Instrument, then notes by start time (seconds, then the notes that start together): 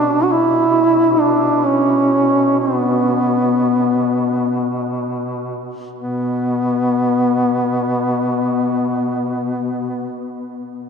duduk
Already playing: B2 D4
0.23 F#4
0.32 E4
1.20 D4
1.65 C#4
2.59 C4
2.77 B3
5.98 B2 B3